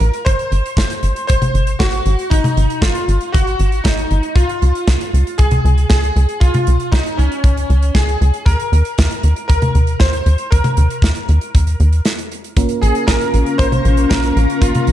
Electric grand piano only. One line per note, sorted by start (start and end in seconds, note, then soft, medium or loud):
0.00 0.27 A#4 loud
0.25 1.24 C5 loud
1.27 1.81 C5 loud
1.79 2.32 F#4 loud
2.30 2.78 D#4 loud
2.81 3.35 F4 medium
3.32 3.81 F#4 loud
3.84 4.37 D#4 medium
4.35 5.42 F4 loud
5.38 5.86 G#4 loud
5.89 6.43 G#4 medium
6.40 6.94 F4 loud
6.92 7.19 D#4 medium
7.17 7.97 C#4 medium
7.95 8.48 G#4 medium
8.46 9.46 A#4 loud
9.48 9.96 A#4 loud
10.00 10.48 C5 loud
10.51 12.01 A#4 medium
12.82 13.09 G#4 medium
13.07 13.60 A#4 loud
13.58 14.12 C5 loud
14.09 14.63 A#4 loud
14.61 14.92 F4 medium